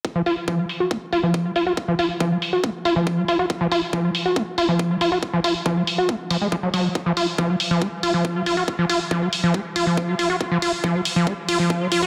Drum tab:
HH |-o-o-o-o|-o-o-o-o|-o-o-o-o|-o-o-o-o|
BD |o-o-o-o-|o-o-o-o-|o-o-o-o-|o-o-o-o-|

HH |-o-o-o-o|-o-o-o-o|-o-o-o-o|
BD |o-o-o-o-|o-o-o-o-|o-o-o-o-|